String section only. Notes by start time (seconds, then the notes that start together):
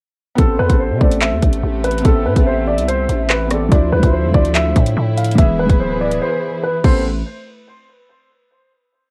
0.38 C3 A3
3.72 D3 F3 A3 E4
5.38 E3 G#4
6.84 A3 E4 B4 C5